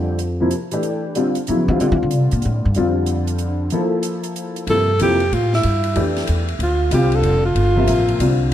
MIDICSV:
0, 0, Header, 1, 5, 480
1, 0, Start_track
1, 0, Tempo, 320684
1, 1250, Time_signature, 3, 2, 24, 8
1, 12781, End_track
2, 0, Start_track
2, 0, Title_t, "Alto saxophone"
2, 0, Program_c, 0, 65
2, 7035, Note_on_c, 0, 69, 98
2, 7466, Note_off_c, 0, 69, 0
2, 7516, Note_on_c, 0, 67, 84
2, 7994, Note_on_c, 0, 65, 81
2, 8016, Note_off_c, 0, 67, 0
2, 8284, Note_off_c, 0, 65, 0
2, 8305, Note_on_c, 0, 64, 74
2, 9188, Note_off_c, 0, 64, 0
2, 9921, Note_on_c, 0, 65, 75
2, 10352, Note_off_c, 0, 65, 0
2, 10386, Note_on_c, 0, 67, 73
2, 10703, Note_on_c, 0, 69, 82
2, 10726, Note_off_c, 0, 67, 0
2, 11150, Note_off_c, 0, 69, 0
2, 11159, Note_on_c, 0, 65, 87
2, 12540, Note_off_c, 0, 65, 0
2, 12781, End_track
3, 0, Start_track
3, 0, Title_t, "Upright piano"
3, 0, Program_c, 1, 0
3, 0, Note_on_c, 1, 50, 54
3, 0, Note_on_c, 1, 55, 50
3, 0, Note_on_c, 1, 60, 49
3, 0, Note_on_c, 1, 67, 61
3, 256, Note_off_c, 1, 50, 0
3, 258, Note_off_c, 1, 55, 0
3, 261, Note_off_c, 1, 60, 0
3, 263, Note_off_c, 1, 67, 0
3, 599, Note_on_c, 1, 48, 60
3, 607, Note_on_c, 1, 53, 54
3, 611, Note_on_c, 1, 58, 54
3, 621, Note_on_c, 1, 64, 61
3, 755, Note_off_c, 1, 48, 0
3, 758, Note_off_c, 1, 53, 0
3, 760, Note_off_c, 1, 58, 0
3, 766, Note_off_c, 1, 64, 0
3, 1070, Note_on_c, 1, 52, 63
3, 1088, Note_on_c, 1, 57, 54
3, 1097, Note_on_c, 1, 62, 57
3, 1101, Note_on_c, 1, 67, 67
3, 1691, Note_off_c, 1, 52, 0
3, 1700, Note_off_c, 1, 57, 0
3, 1705, Note_off_c, 1, 62, 0
3, 1707, Note_off_c, 1, 67, 0
3, 1728, Note_on_c, 1, 50, 57
3, 1737, Note_on_c, 1, 55, 51
3, 1748, Note_on_c, 1, 60, 56
3, 1749, Note_on_c, 1, 65, 66
3, 2003, Note_off_c, 1, 50, 0
3, 2008, Note_off_c, 1, 55, 0
3, 2013, Note_off_c, 1, 60, 0
3, 2014, Note_off_c, 1, 65, 0
3, 2227, Note_on_c, 1, 49, 59
3, 2238, Note_on_c, 1, 54, 53
3, 2241, Note_on_c, 1, 59, 51
3, 2241, Note_on_c, 1, 64, 65
3, 2492, Note_off_c, 1, 49, 0
3, 2497, Note_off_c, 1, 54, 0
3, 2499, Note_off_c, 1, 59, 0
3, 2499, Note_off_c, 1, 64, 0
3, 2526, Note_on_c, 1, 50, 59
3, 2536, Note_on_c, 1, 55, 53
3, 2543, Note_on_c, 1, 60, 52
3, 2545, Note_on_c, 1, 65, 68
3, 2674, Note_off_c, 1, 50, 0
3, 2691, Note_off_c, 1, 55, 0
3, 2696, Note_on_c, 1, 50, 51
3, 2699, Note_off_c, 1, 60, 0
3, 2702, Note_off_c, 1, 65, 0
3, 2713, Note_on_c, 1, 55, 50
3, 2721, Note_on_c, 1, 60, 47
3, 2724, Note_on_c, 1, 65, 62
3, 4024, Note_off_c, 1, 50, 0
3, 4033, Note_off_c, 1, 55, 0
3, 4037, Note_off_c, 1, 60, 0
3, 4038, Note_off_c, 1, 65, 0
3, 4131, Note_on_c, 1, 50, 61
3, 4141, Note_on_c, 1, 55, 58
3, 4154, Note_on_c, 1, 65, 68
3, 4158, Note_on_c, 1, 60, 55
3, 5460, Note_off_c, 1, 50, 0
3, 5465, Note_off_c, 1, 55, 0
3, 5472, Note_off_c, 1, 65, 0
3, 5474, Note_off_c, 1, 60, 0
3, 5569, Note_on_c, 1, 53, 64
3, 5577, Note_on_c, 1, 64, 55
3, 5579, Note_on_c, 1, 58, 55
3, 5589, Note_on_c, 1, 69, 68
3, 6900, Note_off_c, 1, 53, 0
3, 6904, Note_off_c, 1, 64, 0
3, 6905, Note_off_c, 1, 58, 0
3, 6910, Note_off_c, 1, 69, 0
3, 7012, Note_on_c, 1, 48, 53
3, 7017, Note_on_c, 1, 53, 46
3, 7032, Note_on_c, 1, 58, 45
3, 7032, Note_on_c, 1, 64, 56
3, 7282, Note_off_c, 1, 48, 0
3, 7284, Note_off_c, 1, 53, 0
3, 7292, Note_off_c, 1, 58, 0
3, 7292, Note_off_c, 1, 64, 0
3, 7487, Note_on_c, 1, 48, 60
3, 7496, Note_on_c, 1, 58, 52
3, 7501, Note_on_c, 1, 53, 56
3, 7504, Note_on_c, 1, 64, 62
3, 7760, Note_off_c, 1, 48, 0
3, 7764, Note_off_c, 1, 58, 0
3, 7766, Note_off_c, 1, 53, 0
3, 7768, Note_off_c, 1, 64, 0
3, 8913, Note_on_c, 1, 52, 58
3, 8919, Note_on_c, 1, 57, 56
3, 8925, Note_on_c, 1, 62, 55
3, 8926, Note_on_c, 1, 67, 71
3, 9645, Note_off_c, 1, 52, 0
3, 9647, Note_off_c, 1, 57, 0
3, 9650, Note_off_c, 1, 62, 0
3, 9651, Note_off_c, 1, 67, 0
3, 10351, Note_on_c, 1, 50, 62
3, 10354, Note_on_c, 1, 55, 56
3, 10368, Note_on_c, 1, 60, 61
3, 10373, Note_on_c, 1, 65, 74
3, 11085, Note_off_c, 1, 50, 0
3, 11086, Note_off_c, 1, 55, 0
3, 11093, Note_off_c, 1, 60, 0
3, 11096, Note_off_c, 1, 65, 0
3, 11611, Note_on_c, 1, 48, 59
3, 11616, Note_on_c, 1, 53, 51
3, 11623, Note_on_c, 1, 58, 57
3, 11640, Note_on_c, 1, 76, 68
3, 12244, Note_off_c, 1, 48, 0
3, 12246, Note_off_c, 1, 53, 0
3, 12250, Note_off_c, 1, 58, 0
3, 12258, Note_off_c, 1, 76, 0
3, 12282, Note_on_c, 1, 55, 51
3, 12283, Note_on_c, 1, 50, 54
3, 12297, Note_on_c, 1, 60, 53
3, 12298, Note_on_c, 1, 65, 62
3, 12781, Note_off_c, 1, 50, 0
3, 12781, Note_off_c, 1, 55, 0
3, 12781, Note_off_c, 1, 60, 0
3, 12781, Note_off_c, 1, 65, 0
3, 12781, End_track
4, 0, Start_track
4, 0, Title_t, "Upright bass"
4, 0, Program_c, 2, 32
4, 0, Note_on_c, 2, 41, 63
4, 776, Note_off_c, 2, 41, 0
4, 2216, Note_on_c, 2, 53, 79
4, 2508, Note_off_c, 2, 53, 0
4, 2519, Note_on_c, 2, 52, 101
4, 2703, Note_off_c, 2, 52, 0
4, 2703, Note_on_c, 2, 50, 77
4, 2850, Note_off_c, 2, 50, 0
4, 2870, Note_on_c, 2, 52, 103
4, 3014, Note_off_c, 2, 52, 0
4, 3032, Note_on_c, 2, 50, 85
4, 3194, Note_off_c, 2, 50, 0
4, 3194, Note_on_c, 2, 48, 77
4, 3469, Note_off_c, 2, 48, 0
4, 3478, Note_on_c, 2, 46, 80
4, 3643, Note_off_c, 2, 46, 0
4, 3673, Note_on_c, 2, 45, 87
4, 3955, Note_off_c, 2, 45, 0
4, 3972, Note_on_c, 2, 43, 85
4, 4130, Note_off_c, 2, 43, 0
4, 4150, Note_on_c, 2, 41, 74
4, 5514, Note_off_c, 2, 41, 0
4, 6989, Note_on_c, 2, 43, 79
4, 7460, Note_off_c, 2, 43, 0
4, 7480, Note_on_c, 2, 41, 74
4, 7946, Note_off_c, 2, 41, 0
4, 7962, Note_on_c, 2, 45, 82
4, 8428, Note_off_c, 2, 45, 0
4, 8441, Note_on_c, 2, 43, 75
4, 8908, Note_off_c, 2, 43, 0
4, 8918, Note_on_c, 2, 41, 77
4, 9387, Note_off_c, 2, 41, 0
4, 9408, Note_on_c, 2, 40, 80
4, 9856, Note_off_c, 2, 40, 0
4, 9865, Note_on_c, 2, 38, 81
4, 10333, Note_off_c, 2, 38, 0
4, 10342, Note_on_c, 2, 36, 82
4, 10810, Note_off_c, 2, 36, 0
4, 10819, Note_on_c, 2, 29, 80
4, 11294, Note_off_c, 2, 29, 0
4, 11303, Note_on_c, 2, 31, 78
4, 11778, Note_off_c, 2, 31, 0
4, 11787, Note_on_c, 2, 33, 81
4, 12247, Note_off_c, 2, 33, 0
4, 12256, Note_on_c, 2, 36, 78
4, 12739, Note_off_c, 2, 36, 0
4, 12781, End_track
5, 0, Start_track
5, 0, Title_t, "Drums"
5, 278, Note_on_c, 9, 42, 39
5, 428, Note_off_c, 9, 42, 0
5, 758, Note_on_c, 9, 42, 46
5, 908, Note_off_c, 9, 42, 0
5, 1068, Note_on_c, 9, 42, 44
5, 1218, Note_off_c, 9, 42, 0
5, 1241, Note_on_c, 9, 42, 40
5, 1390, Note_off_c, 9, 42, 0
5, 1723, Note_on_c, 9, 42, 47
5, 1873, Note_off_c, 9, 42, 0
5, 2023, Note_on_c, 9, 42, 41
5, 2172, Note_off_c, 9, 42, 0
5, 2200, Note_on_c, 9, 42, 41
5, 2350, Note_off_c, 9, 42, 0
5, 2694, Note_on_c, 9, 42, 43
5, 2844, Note_off_c, 9, 42, 0
5, 3154, Note_on_c, 9, 42, 51
5, 3304, Note_off_c, 9, 42, 0
5, 3463, Note_on_c, 9, 42, 43
5, 3613, Note_off_c, 9, 42, 0
5, 3622, Note_on_c, 9, 42, 41
5, 3772, Note_off_c, 9, 42, 0
5, 4108, Note_on_c, 9, 42, 40
5, 4258, Note_off_c, 9, 42, 0
5, 4585, Note_on_c, 9, 42, 48
5, 4735, Note_off_c, 9, 42, 0
5, 4899, Note_on_c, 9, 42, 43
5, 5049, Note_off_c, 9, 42, 0
5, 5066, Note_on_c, 9, 42, 44
5, 5216, Note_off_c, 9, 42, 0
5, 5540, Note_on_c, 9, 42, 45
5, 5690, Note_off_c, 9, 42, 0
5, 6028, Note_on_c, 9, 42, 53
5, 6178, Note_off_c, 9, 42, 0
5, 6339, Note_on_c, 9, 42, 45
5, 6489, Note_off_c, 9, 42, 0
5, 6525, Note_on_c, 9, 42, 52
5, 6675, Note_off_c, 9, 42, 0
5, 6829, Note_on_c, 9, 42, 47
5, 6979, Note_off_c, 9, 42, 0
5, 6994, Note_on_c, 9, 51, 56
5, 7144, Note_off_c, 9, 51, 0
5, 7476, Note_on_c, 9, 44, 53
5, 7476, Note_on_c, 9, 51, 65
5, 7626, Note_off_c, 9, 44, 0
5, 7626, Note_off_c, 9, 51, 0
5, 7785, Note_on_c, 9, 51, 39
5, 7935, Note_off_c, 9, 51, 0
5, 7973, Note_on_c, 9, 51, 50
5, 8122, Note_off_c, 9, 51, 0
5, 8281, Note_on_c, 9, 38, 42
5, 8430, Note_on_c, 9, 51, 55
5, 8431, Note_off_c, 9, 38, 0
5, 8580, Note_off_c, 9, 51, 0
5, 8735, Note_on_c, 9, 51, 46
5, 8885, Note_off_c, 9, 51, 0
5, 8914, Note_on_c, 9, 51, 54
5, 9064, Note_off_c, 9, 51, 0
5, 9227, Note_on_c, 9, 51, 39
5, 9234, Note_on_c, 9, 38, 42
5, 9376, Note_off_c, 9, 51, 0
5, 9384, Note_off_c, 9, 38, 0
5, 9390, Note_on_c, 9, 44, 54
5, 9390, Note_on_c, 9, 51, 62
5, 9540, Note_off_c, 9, 44, 0
5, 9540, Note_off_c, 9, 51, 0
5, 9706, Note_on_c, 9, 51, 39
5, 9856, Note_off_c, 9, 51, 0
5, 9877, Note_on_c, 9, 51, 58
5, 10027, Note_off_c, 9, 51, 0
5, 10345, Note_on_c, 9, 44, 50
5, 10345, Note_on_c, 9, 51, 61
5, 10495, Note_off_c, 9, 44, 0
5, 10495, Note_off_c, 9, 51, 0
5, 10653, Note_on_c, 9, 51, 41
5, 10803, Note_off_c, 9, 51, 0
5, 10827, Note_on_c, 9, 51, 52
5, 10977, Note_off_c, 9, 51, 0
5, 11310, Note_on_c, 9, 51, 59
5, 11460, Note_off_c, 9, 51, 0
5, 11787, Note_on_c, 9, 44, 46
5, 11787, Note_on_c, 9, 51, 61
5, 11936, Note_off_c, 9, 44, 0
5, 11936, Note_off_c, 9, 51, 0
5, 12101, Note_on_c, 9, 51, 39
5, 12251, Note_off_c, 9, 51, 0
5, 12275, Note_on_c, 9, 44, 47
5, 12275, Note_on_c, 9, 51, 65
5, 12425, Note_off_c, 9, 44, 0
5, 12425, Note_off_c, 9, 51, 0
5, 12781, End_track
0, 0, End_of_file